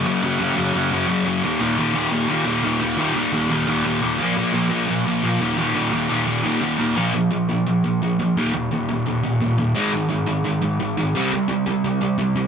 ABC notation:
X:1
M:4/4
L:1/8
Q:1/4=173
K:Bbmix
V:1 name="Distorted electric guitar" clef=bass
[_G,,_D,_G,] [G,,D,G,] [G,,D,G,] [G,,D,G,] [G,,D,G,] [G,,D,G,] [G,,D,G,] [G,,D,G,] | [E,,B,,E,] [E,,B,,E,] [E,,B,,E,] [E,,B,,E,] [E,,B,,E,] [E,,B,,E,] [E,,B,,E,] [E,,B,,E,] | [E,,B,,E,] [E,,B,,E,] [E,,B,,E,] [E,,B,,E,] [E,,B,,E,] [E,,B,,E,] [E,,B,,E,] [E,,B,,E,] | [B,,F,B,] [B,,F,B,] [B,,F,B,] [B,,F,B,] [B,,F,B,] [B,,F,B,] [B,,F,B,] [E,,B,,E,] |
[E,,B,,E,] [E,,B,,E,] [E,,B,,E,] [E,,B,,E,] [E,,B,,E,] [E,,B,,E,] [E,,B,,E,] [E,,B,,E,] | [B,,F,B,] [B,,F,] [B,,F,] [B,,F,] [B,,F,] [B,,F,] [B,,F,] [B,,F,] | [E,,B,,E,] [E,,B,,] [E,,B,,] [E,,B,,] [E,,B,,] [E,,B,,] [E,,B,,] [E,,B,,] | [A,,E,A,] [A,,E,] [A,,E,] [A,,E,] [A,,E,] [A,,E,] [A,,E,] [A,,E,] |
[C,G,C] [C,G,] [C,G,] [C,G,] [C,G,] [C,G,] [C,G,] [C,G,] |]